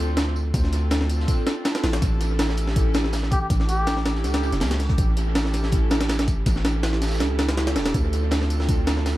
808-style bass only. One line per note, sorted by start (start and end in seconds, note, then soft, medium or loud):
0.00 0.53 D2 loud
0.54 1.27 D2 loud
1.84 2.00 A1 medium
2.02 3.49 A1 loud
3.50 4.25 A1 loud
4.24 4.52 C#2 loud
4.52 4.63 E1 medium
4.61 4.97 C#2 medium
4.98 6.45 A1 loud
6.46 7.22 A1 loud
7.20 7.77 C#2 loud
7.76 7.93 E1 medium
7.94 9.17 D2 loud